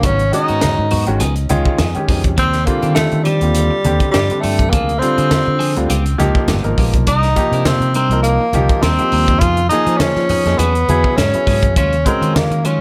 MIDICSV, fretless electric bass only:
0, 0, Header, 1, 3, 480
1, 0, Start_track
1, 0, Tempo, 586510
1, 28, Time_signature, 4, 2, 24, 8
1, 10483, End_track
2, 0, Start_track
2, 0, Title_t, "Fretless electric bass"
2, 0, Program_c, 0, 35
2, 26, Note_on_c, 0, 32, 97
2, 245, Note_off_c, 0, 32, 0
2, 402, Note_on_c, 0, 44, 78
2, 618, Note_off_c, 0, 44, 0
2, 643, Note_on_c, 0, 44, 92
2, 859, Note_off_c, 0, 44, 0
2, 878, Note_on_c, 0, 32, 85
2, 978, Note_off_c, 0, 32, 0
2, 992, Note_on_c, 0, 37, 95
2, 1208, Note_off_c, 0, 37, 0
2, 1227, Note_on_c, 0, 37, 77
2, 1345, Note_off_c, 0, 37, 0
2, 1459, Note_on_c, 0, 41, 82
2, 1581, Note_off_c, 0, 41, 0
2, 1708, Note_on_c, 0, 41, 77
2, 1947, Note_off_c, 0, 41, 0
2, 1947, Note_on_c, 0, 39, 89
2, 2166, Note_off_c, 0, 39, 0
2, 2312, Note_on_c, 0, 51, 78
2, 2533, Note_off_c, 0, 51, 0
2, 2555, Note_on_c, 0, 51, 89
2, 2775, Note_off_c, 0, 51, 0
2, 2792, Note_on_c, 0, 39, 79
2, 3013, Note_off_c, 0, 39, 0
2, 3147, Note_on_c, 0, 39, 77
2, 3265, Note_off_c, 0, 39, 0
2, 3385, Note_on_c, 0, 43, 87
2, 3504, Note_off_c, 0, 43, 0
2, 3629, Note_on_c, 0, 43, 82
2, 3868, Note_off_c, 0, 43, 0
2, 3868, Note_on_c, 0, 38, 93
2, 4087, Note_off_c, 0, 38, 0
2, 4238, Note_on_c, 0, 50, 79
2, 4456, Note_off_c, 0, 50, 0
2, 4478, Note_on_c, 0, 50, 93
2, 4697, Note_off_c, 0, 50, 0
2, 4722, Note_on_c, 0, 38, 80
2, 4821, Note_off_c, 0, 38, 0
2, 4828, Note_on_c, 0, 37, 93
2, 5047, Note_off_c, 0, 37, 0
2, 5068, Note_on_c, 0, 37, 81
2, 5186, Note_off_c, 0, 37, 0
2, 5303, Note_on_c, 0, 31, 74
2, 5421, Note_off_c, 0, 31, 0
2, 5436, Note_on_c, 0, 32, 74
2, 5537, Note_off_c, 0, 32, 0
2, 5545, Note_on_c, 0, 34, 75
2, 5663, Note_off_c, 0, 34, 0
2, 5676, Note_on_c, 0, 35, 78
2, 5785, Note_off_c, 0, 35, 0
2, 5785, Note_on_c, 0, 36, 91
2, 6005, Note_off_c, 0, 36, 0
2, 6149, Note_on_c, 0, 48, 85
2, 6372, Note_off_c, 0, 48, 0
2, 6383, Note_on_c, 0, 48, 84
2, 6608, Note_off_c, 0, 48, 0
2, 6622, Note_on_c, 0, 36, 80
2, 6848, Note_off_c, 0, 36, 0
2, 6977, Note_on_c, 0, 36, 79
2, 7100, Note_off_c, 0, 36, 0
2, 7216, Note_on_c, 0, 39, 82
2, 7339, Note_off_c, 0, 39, 0
2, 7464, Note_on_c, 0, 39, 85
2, 7707, Note_off_c, 0, 39, 0
2, 7707, Note_on_c, 0, 41, 92
2, 7926, Note_off_c, 0, 41, 0
2, 8072, Note_on_c, 0, 53, 83
2, 8293, Note_off_c, 0, 53, 0
2, 8316, Note_on_c, 0, 53, 88
2, 8535, Note_off_c, 0, 53, 0
2, 8555, Note_on_c, 0, 41, 84
2, 8657, Note_off_c, 0, 41, 0
2, 8662, Note_on_c, 0, 40, 101
2, 8884, Note_off_c, 0, 40, 0
2, 8904, Note_on_c, 0, 40, 82
2, 9023, Note_off_c, 0, 40, 0
2, 9142, Note_on_c, 0, 44, 84
2, 9263, Note_off_c, 0, 44, 0
2, 9387, Note_on_c, 0, 44, 83
2, 9627, Note_off_c, 0, 44, 0
2, 9627, Note_on_c, 0, 39, 93
2, 9847, Note_off_c, 0, 39, 0
2, 9993, Note_on_c, 0, 51, 87
2, 10214, Note_off_c, 0, 51, 0
2, 10231, Note_on_c, 0, 51, 92
2, 10453, Note_off_c, 0, 51, 0
2, 10483, End_track
3, 0, Start_track
3, 0, Title_t, "Muted fretless electric bass strokes"
3, 1598, Note_on_c, 9, 29, 37
3, 1680, Note_off_c, 9, 29, 0
3, 3515, Note_on_c, 9, 29, 35
3, 3597, Note_off_c, 9, 29, 0
3, 7352, Note_on_c, 9, 29, 34
3, 7434, Note_off_c, 9, 29, 0
3, 9275, Note_on_c, 9, 29, 35
3, 9356, Note_off_c, 9, 29, 0
3, 10483, End_track
0, 0, End_of_file